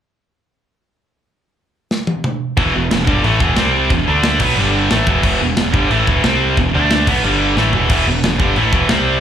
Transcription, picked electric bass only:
2.57 E1
2.74 E1
2.91 E1
3.08 G1
3.23 A1
3.40 E1
3.57 C2
3.90 E1
4.08 D2
4.40 B1
4.56 G1
4.91 A1
5.07 E1
5.24 E1
5.41 E1
5.57 E1
5.74 G1
5.91 A1
6.08 E1
6.24 C2
6.57 E1
6.75 D2
7.07 B1
7.24 G1
7.56 A1
7.73 E1
7.90 E1
8.06 E1
8.23 E1
8.40 G1
8.56 A1
8.73 E1
8.90 C2

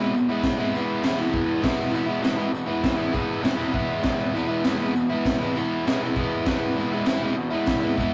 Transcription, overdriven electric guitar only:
Already playing: E2 B2
0.00 E3 G#3 B3 E4
0.15 muted overdriven electric guitar stroke
0.29 G#3 B3 E4
0.33 E3
0.58 E3 G#3 B3 E4
0.73 E3 G#3 B3 E4
1.03 E2 B2 E3 G#3 B3 E4
1.18 E3 G#3 B3 E4
1.32 E3 G#3 B3 E4
1.61 E2 B2 E3 G#3 B3 E4
1.92 E3 G#3 B3 E4
2.06 E3 G#3 B3 E4
2.21 E2 B2 E3 G#3 B3 E4
2.36 E3 G#3 B3 E4
2.52 muted overdriven electric guitar stroke
2.66 E3 G#3 B3 E4
2.97 E3 G#3 B3 E4
3.12 E3 G#3 B3 E4
3.40 E2 B2 E3 G#3 B3 E4
3.57 E3 G#3 B3 E4
3.71 E3 G#3 B3 E4
4.02 E2 B2 E3 G#3 B3 E4
4.33 E3 G#3 B3 E4
4.48 E3 G#3 B3 E4
4.63 E2 B2 E3 G#3 B3 E4
4.79 G#3 B3 E4
4.83 E3
4.95 muted overdriven electric guitar stroke
5.10 G#3 B3 E4
5.14 E3
5.39 E3 G#3 B3 E4
5.56 E3 G#3 B3 E4
5.85 E2 B2 E3 G#3 B3 E4
6.02 E3 G#3 B3 E4
6.17 E3 G#3 B3 E4
6.46 E2 B2 E3 G#3 B3 E4
6.76 E3 G#3 B3 E4
6.91 E3 G#3 B3 E4
7.06 E2 B2 E3 G#3 B3 E4
7.22 E3 G#3 B3 E4
7.36 muted overdriven electric guitar stroke
7.50 E3 G#3 B3 E4
7.81 E3 G#3 B3 E4
7.97 E3 G#3 B3 E4

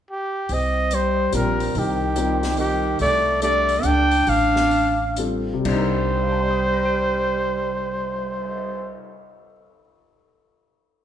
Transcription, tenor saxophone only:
0.52 C4
0.93 G3
1.34 G3
1.75 D#3
2.58 D#3
3.01 A3
3.42 A3
3.85 D4
4.26 D4
5.65 G3

